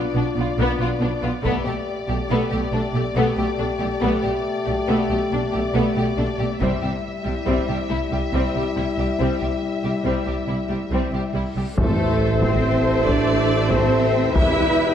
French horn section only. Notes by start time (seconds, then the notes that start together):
Already playing: D4 F4
1.44 A3 G4
6.62 G3 E4
11.80 C5 E5
14.36 B4